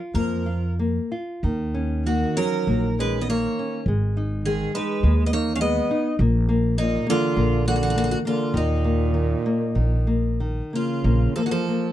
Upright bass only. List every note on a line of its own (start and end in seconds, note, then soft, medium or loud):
0.14 0.98 F2 medium
1.43 2.23 D#2 medium
2.67 3.45 A#1 medium
3.86 4.62 G#1 medium
5.03 5.79 D#2 medium
6.19 6.96 A#1 medium
7.37 8.13 A#1 medium
8.54 9.33 D#2 medium
9.75 10.60 A#1 medium
11.04 11.25 A#1 medium